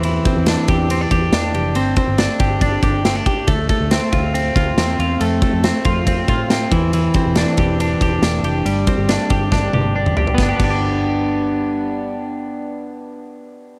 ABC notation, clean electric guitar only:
X:1
M:4/4
L:1/16
Q:1/4=139
K:Gmix
V:1 name="Clean electric guitar"
E,2 C2 D2 G2 C D G2 D2 G2 | C2 C2 D2 G2 D2 G2 C D G2 | A,2 A,2 C2 F2 C2 F2 C2 F2 | A,2 A,2 C2 F2 C2 F2 C2 E,2 |
E,2 C2 D2 G2 D2 G2 D2 G2 | G,2 C2 D2 G2 D2 G2 D2 G2 | [B,DG]2 [B,DG]12- [B,DG]2- | [B,DG]16 |]